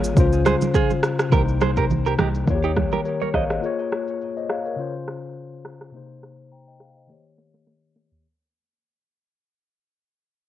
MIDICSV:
0, 0, Header, 1, 5, 480
1, 0, Start_track
1, 0, Tempo, 576923
1, 1101, Time_signature, 4, 2, 24, 8
1, 8720, End_track
2, 0, Start_track
2, 0, Title_t, "Tine electric piano"
2, 0, Program_c, 0, 4
2, 0, Control_c, 0, 64, 127
2, 0, Note_on_c, 0, 58, 80
2, 0, Note_on_c, 0, 65, 70
2, 0, Note_on_c, 0, 68, 69
2, 0, Note_on_c, 0, 73, 86
2, 111, Note_off_c, 0, 58, 0
2, 118, Note_off_c, 0, 65, 0
2, 121, Note_on_c, 0, 49, 79
2, 125, Note_off_c, 0, 68, 0
2, 134, Note_on_c, 0, 61, 73
2, 149, Note_on_c, 0, 65, 74
2, 152, Control_c, 0, 64, 0
2, 159, Note_off_c, 0, 73, 0
2, 162, Note_on_c, 0, 72, 92
2, 307, Control_c, 0, 64, 127
2, 1071, Note_off_c, 0, 49, 0
2, 1078, Note_off_c, 0, 61, 0
2, 1080, Note_on_c, 0, 48, 80
2, 1086, Note_off_c, 0, 65, 0
2, 1093, Note_off_c, 0, 72, 0
2, 1094, Note_on_c, 0, 58, 74
2, 1108, Note_on_c, 0, 63, 71
2, 1111, Control_c, 0, 64, 0
2, 1122, Note_on_c, 0, 72, 84
2, 1235, Control_c, 0, 64, 127
2, 2031, Note_off_c, 0, 48, 0
2, 2038, Note_off_c, 0, 58, 0
2, 2041, Note_on_c, 0, 51, 81
2, 2045, Note_off_c, 0, 63, 0
2, 2052, Note_off_c, 0, 72, 0
2, 2054, Note_on_c, 0, 58, 74
2, 2068, Note_on_c, 0, 65, 59
2, 2071, Control_c, 0, 64, 0
2, 2082, Note_on_c, 0, 73, 89
2, 2122, Note_on_c, 0, 67, 74
2, 2124, Note_off_c, 0, 65, 0
2, 2217, Control_c, 0, 64, 127
2, 2531, Note_off_c, 0, 73, 0
2, 2541, Note_on_c, 0, 73, 65
2, 2546, Note_on_c, 0, 70, 54
2, 2769, Note_off_c, 0, 73, 0
2, 2772, Note_off_c, 0, 70, 0
2, 2781, Note_on_c, 0, 77, 73
2, 2786, Note_on_c, 0, 73, 61
2, 2907, Note_off_c, 0, 77, 0
2, 2909, Note_off_c, 0, 73, 0
2, 2913, Note_on_c, 0, 75, 64
2, 2917, Note_on_c, 0, 72, 54
2, 2990, Note_off_c, 0, 58, 0
2, 2991, Note_off_c, 0, 51, 0
2, 3000, Note_on_c, 0, 58, 80
2, 3014, Note_on_c, 0, 65, 71
2, 3028, Note_on_c, 0, 68, 70
2, 3033, Note_off_c, 0, 67, 0
2, 3033, Control_c, 0, 64, 0
2, 3042, Note_on_c, 0, 73, 88
2, 3141, Note_off_c, 0, 75, 0
2, 3143, Note_off_c, 0, 72, 0
2, 3187, Control_c, 0, 64, 127
2, 3502, Note_off_c, 0, 73, 0
2, 3634, Note_on_c, 0, 75, 68
2, 3639, Note_on_c, 0, 72, 59
2, 3736, Note_off_c, 0, 75, 0
2, 3739, Note_off_c, 0, 72, 0
2, 3741, Note_on_c, 0, 77, 67
2, 3745, Note_on_c, 0, 73, 59
2, 3863, Note_off_c, 0, 73, 0
2, 3866, Note_off_c, 0, 77, 0
2, 3873, Note_on_c, 0, 73, 67
2, 3879, Note_on_c, 0, 70, 56
2, 3951, Note_off_c, 0, 58, 0
2, 3958, Note_off_c, 0, 65, 0
2, 3960, Note_on_c, 0, 49, 82
2, 3965, Note_off_c, 0, 68, 0
2, 3974, Note_on_c, 0, 61, 73
2, 3988, Note_on_c, 0, 65, 75
2, 3994, Control_c, 0, 64, 0
2, 4002, Note_on_c, 0, 72, 85
2, 4101, Note_off_c, 0, 73, 0
2, 4104, Note_off_c, 0, 70, 0
2, 4155, Control_c, 0, 64, 127
2, 4911, Note_off_c, 0, 49, 0
2, 4918, Note_off_c, 0, 61, 0
2, 4920, Note_on_c, 0, 48, 76
2, 4925, Note_off_c, 0, 65, 0
2, 4933, Note_off_c, 0, 72, 0
2, 4935, Note_on_c, 0, 58, 69
2, 4948, Note_on_c, 0, 63, 71
2, 4952, Control_c, 0, 64, 0
2, 4962, Note_on_c, 0, 72, 83
2, 5083, Control_c, 0, 64, 127
2, 5187, Note_off_c, 0, 72, 0
2, 5421, Note_on_c, 0, 82, 63
2, 5427, Note_on_c, 0, 79, 53
2, 5544, Note_off_c, 0, 79, 0
2, 5547, Note_off_c, 0, 82, 0
2, 5554, Note_on_c, 0, 79, 68
2, 5559, Note_on_c, 0, 75, 58
2, 5656, Note_off_c, 0, 79, 0
2, 5659, Note_off_c, 0, 75, 0
2, 5662, Note_on_c, 0, 77, 66
2, 5787, Note_off_c, 0, 77, 0
2, 5795, Note_on_c, 0, 75, 63
2, 5800, Note_on_c, 0, 72, 53
2, 5871, Note_off_c, 0, 48, 0
2, 5879, Note_off_c, 0, 58, 0
2, 5880, Note_on_c, 0, 51, 75
2, 5885, Note_off_c, 0, 63, 0
2, 5894, Note_on_c, 0, 58, 70
2, 5908, Note_on_c, 0, 67, 70
2, 5911, Control_c, 0, 64, 0
2, 5922, Note_on_c, 0, 73, 86
2, 6022, Note_off_c, 0, 75, 0
2, 6025, Note_off_c, 0, 72, 0
2, 6060, Control_c, 0, 64, 127
2, 6831, Note_off_c, 0, 51, 0
2, 6838, Note_off_c, 0, 58, 0
2, 6845, Note_off_c, 0, 67, 0
2, 6853, Note_off_c, 0, 73, 0
2, 6873, Control_c, 0, 64, 0
2, 8720, End_track
3, 0, Start_track
3, 0, Title_t, "Clean electric guitar"
3, 0, Program_c, 1, 27
3, 385, Note_on_c, 1, 72, 74
3, 392, Note_on_c, 1, 68, 60
3, 454, Note_off_c, 1, 72, 0
3, 459, Note_off_c, 1, 68, 0
3, 625, Note_on_c, 1, 68, 92
3, 632, Note_on_c, 1, 65, 72
3, 751, Note_off_c, 1, 68, 0
3, 756, Note_off_c, 1, 65, 0
3, 1104, Note_on_c, 1, 70, 92
3, 1111, Note_on_c, 1, 67, 70
3, 1174, Note_off_c, 1, 70, 0
3, 1178, Note_off_c, 1, 67, 0
3, 1345, Note_on_c, 1, 72, 83
3, 1351, Note_on_c, 1, 68, 64
3, 1414, Note_off_c, 1, 72, 0
3, 1418, Note_off_c, 1, 68, 0
3, 1476, Note_on_c, 1, 70, 86
3, 1483, Note_on_c, 1, 67, 65
3, 1533, Note_off_c, 1, 70, 0
3, 1538, Note_off_c, 1, 67, 0
3, 1717, Note_on_c, 1, 70, 71
3, 1723, Note_on_c, 1, 67, 57
3, 1773, Note_off_c, 1, 70, 0
3, 1778, Note_off_c, 1, 67, 0
3, 1825, Note_on_c, 1, 67, 80
3, 1832, Note_on_c, 1, 63, 62
3, 1894, Note_off_c, 1, 67, 0
3, 1899, Note_off_c, 1, 63, 0
3, 2196, Note_on_c, 1, 67, 77
3, 2203, Note_on_c, 1, 63, 58
3, 2253, Note_off_c, 1, 67, 0
3, 2258, Note_off_c, 1, 63, 0
3, 2437, Note_on_c, 1, 70, 76
3, 2443, Note_on_c, 1, 67, 63
3, 2493, Note_off_c, 1, 70, 0
3, 2498, Note_off_c, 1, 67, 0
3, 2676, Note_on_c, 1, 73, 70
3, 2683, Note_on_c, 1, 70, 52
3, 2733, Note_off_c, 1, 73, 0
3, 2738, Note_off_c, 1, 70, 0
3, 2785, Note_on_c, 1, 75, 83
3, 2791, Note_on_c, 1, 72, 60
3, 2854, Note_off_c, 1, 75, 0
3, 2859, Note_off_c, 1, 72, 0
3, 8720, End_track
4, 0, Start_track
4, 0, Title_t, "808-style bass"
4, 0, Program_c, 2, 38
4, 0, Note_on_c, 2, 32, 90
4, 107, Note_off_c, 2, 32, 0
4, 140, Note_on_c, 2, 37, 105
4, 460, Note_off_c, 2, 37, 0
4, 1101, Note_on_c, 2, 36, 101
4, 1788, Note_off_c, 2, 36, 0
4, 1821, Note_on_c, 2, 36, 90
4, 2027, Note_off_c, 2, 36, 0
4, 2059, Note_on_c, 2, 39, 100
4, 2379, Note_off_c, 2, 39, 0
4, 2780, Note_on_c, 2, 32, 89
4, 2986, Note_off_c, 2, 32, 0
4, 8720, End_track
5, 0, Start_track
5, 0, Title_t, "Drums"
5, 33, Note_on_c, 9, 82, 95
5, 117, Note_off_c, 9, 82, 0
5, 140, Note_on_c, 9, 36, 97
5, 140, Note_on_c, 9, 82, 79
5, 223, Note_off_c, 9, 36, 0
5, 223, Note_off_c, 9, 82, 0
5, 271, Note_on_c, 9, 82, 55
5, 354, Note_off_c, 9, 82, 0
5, 381, Note_on_c, 9, 82, 52
5, 383, Note_on_c, 9, 37, 84
5, 387, Note_on_c, 9, 63, 84
5, 465, Note_off_c, 9, 82, 0
5, 466, Note_off_c, 9, 37, 0
5, 470, Note_off_c, 9, 63, 0
5, 511, Note_on_c, 9, 82, 75
5, 518, Note_on_c, 9, 63, 77
5, 594, Note_off_c, 9, 82, 0
5, 601, Note_off_c, 9, 63, 0
5, 620, Note_on_c, 9, 36, 83
5, 621, Note_on_c, 9, 82, 77
5, 703, Note_off_c, 9, 36, 0
5, 704, Note_off_c, 9, 82, 0
5, 752, Note_on_c, 9, 82, 51
5, 760, Note_on_c, 9, 63, 50
5, 835, Note_off_c, 9, 82, 0
5, 843, Note_off_c, 9, 63, 0
5, 858, Note_on_c, 9, 37, 94
5, 861, Note_on_c, 9, 82, 53
5, 942, Note_off_c, 9, 37, 0
5, 944, Note_off_c, 9, 82, 0
5, 994, Note_on_c, 9, 37, 88
5, 994, Note_on_c, 9, 82, 76
5, 1077, Note_off_c, 9, 37, 0
5, 1078, Note_off_c, 9, 82, 0
5, 1101, Note_on_c, 9, 36, 116
5, 1101, Note_on_c, 9, 82, 61
5, 1106, Note_on_c, 9, 64, 74
5, 1184, Note_off_c, 9, 36, 0
5, 1185, Note_off_c, 9, 82, 0
5, 1189, Note_off_c, 9, 64, 0
5, 1234, Note_on_c, 9, 82, 47
5, 1318, Note_off_c, 9, 82, 0
5, 1338, Note_on_c, 9, 82, 54
5, 1343, Note_on_c, 9, 37, 81
5, 1345, Note_on_c, 9, 63, 74
5, 1421, Note_off_c, 9, 82, 0
5, 1426, Note_off_c, 9, 37, 0
5, 1428, Note_off_c, 9, 63, 0
5, 1470, Note_on_c, 9, 82, 86
5, 1473, Note_on_c, 9, 36, 83
5, 1554, Note_off_c, 9, 82, 0
5, 1556, Note_off_c, 9, 36, 0
5, 1583, Note_on_c, 9, 82, 67
5, 1588, Note_on_c, 9, 64, 75
5, 1666, Note_off_c, 9, 82, 0
5, 1671, Note_off_c, 9, 64, 0
5, 1714, Note_on_c, 9, 82, 47
5, 1797, Note_off_c, 9, 82, 0
5, 1819, Note_on_c, 9, 37, 97
5, 1820, Note_on_c, 9, 82, 53
5, 1825, Note_on_c, 9, 63, 79
5, 1825, Note_on_c, 9, 64, 85
5, 1902, Note_off_c, 9, 37, 0
5, 1903, Note_off_c, 9, 82, 0
5, 1908, Note_off_c, 9, 63, 0
5, 1908, Note_off_c, 9, 64, 0
5, 1953, Note_on_c, 9, 82, 92
5, 2036, Note_off_c, 9, 82, 0
5, 2059, Note_on_c, 9, 36, 92
5, 2059, Note_on_c, 9, 82, 79
5, 2142, Note_off_c, 9, 36, 0
5, 2142, Note_off_c, 9, 82, 0
5, 2190, Note_on_c, 9, 82, 53
5, 2274, Note_off_c, 9, 82, 0
5, 2301, Note_on_c, 9, 36, 86
5, 2301, Note_on_c, 9, 82, 51
5, 2303, Note_on_c, 9, 37, 83
5, 2307, Note_on_c, 9, 63, 81
5, 2384, Note_off_c, 9, 36, 0
5, 2385, Note_off_c, 9, 82, 0
5, 2386, Note_off_c, 9, 37, 0
5, 2391, Note_off_c, 9, 63, 0
5, 2431, Note_on_c, 9, 82, 76
5, 2439, Note_on_c, 9, 63, 77
5, 2514, Note_off_c, 9, 82, 0
5, 2522, Note_off_c, 9, 63, 0
5, 2541, Note_on_c, 9, 82, 73
5, 2624, Note_off_c, 9, 82, 0
5, 2672, Note_on_c, 9, 82, 50
5, 2680, Note_on_c, 9, 63, 50
5, 2756, Note_off_c, 9, 82, 0
5, 2763, Note_off_c, 9, 63, 0
5, 2779, Note_on_c, 9, 37, 90
5, 2780, Note_on_c, 9, 36, 92
5, 2781, Note_on_c, 9, 82, 53
5, 2862, Note_off_c, 9, 37, 0
5, 2863, Note_off_c, 9, 36, 0
5, 2865, Note_off_c, 9, 82, 0
5, 2914, Note_on_c, 9, 37, 85
5, 2915, Note_on_c, 9, 82, 76
5, 2997, Note_off_c, 9, 37, 0
5, 2998, Note_off_c, 9, 82, 0
5, 3023, Note_on_c, 9, 82, 63
5, 3106, Note_off_c, 9, 82, 0
5, 3156, Note_on_c, 9, 82, 45
5, 3239, Note_off_c, 9, 82, 0
5, 3259, Note_on_c, 9, 82, 56
5, 3264, Note_on_c, 9, 37, 81
5, 3343, Note_off_c, 9, 82, 0
5, 3348, Note_off_c, 9, 37, 0
5, 3391, Note_on_c, 9, 82, 88
5, 3475, Note_off_c, 9, 82, 0
5, 3504, Note_on_c, 9, 82, 65
5, 3587, Note_off_c, 9, 82, 0
5, 3635, Note_on_c, 9, 82, 48
5, 3718, Note_off_c, 9, 82, 0
5, 3740, Note_on_c, 9, 37, 93
5, 3741, Note_on_c, 9, 82, 51
5, 3823, Note_off_c, 9, 37, 0
5, 3824, Note_off_c, 9, 82, 0
5, 3873, Note_on_c, 9, 82, 93
5, 3957, Note_off_c, 9, 82, 0
5, 3981, Note_on_c, 9, 82, 75
5, 4064, Note_off_c, 9, 82, 0
5, 4111, Note_on_c, 9, 82, 53
5, 4194, Note_off_c, 9, 82, 0
5, 4224, Note_on_c, 9, 37, 82
5, 4307, Note_off_c, 9, 37, 0
5, 4352, Note_on_c, 9, 82, 70
5, 4435, Note_off_c, 9, 82, 0
5, 4462, Note_on_c, 9, 82, 76
5, 4545, Note_off_c, 9, 82, 0
5, 4593, Note_on_c, 9, 82, 50
5, 4676, Note_off_c, 9, 82, 0
5, 4700, Note_on_c, 9, 37, 96
5, 4783, Note_off_c, 9, 37, 0
5, 4834, Note_on_c, 9, 37, 82
5, 4917, Note_off_c, 9, 37, 0
5, 5184, Note_on_c, 9, 37, 78
5, 5267, Note_off_c, 9, 37, 0
5, 5659, Note_on_c, 9, 37, 91
5, 5742, Note_off_c, 9, 37, 0
5, 5901, Note_on_c, 9, 38, 50
5, 5984, Note_off_c, 9, 38, 0
5, 6141, Note_on_c, 9, 38, 68
5, 6224, Note_off_c, 9, 38, 0
5, 6274, Note_on_c, 9, 38, 60
5, 6357, Note_off_c, 9, 38, 0
5, 6381, Note_on_c, 9, 38, 73
5, 6464, Note_off_c, 9, 38, 0
5, 6621, Note_on_c, 9, 38, 91
5, 6704, Note_off_c, 9, 38, 0
5, 6753, Note_on_c, 9, 43, 83
5, 6836, Note_off_c, 9, 43, 0
5, 8720, End_track
0, 0, End_of_file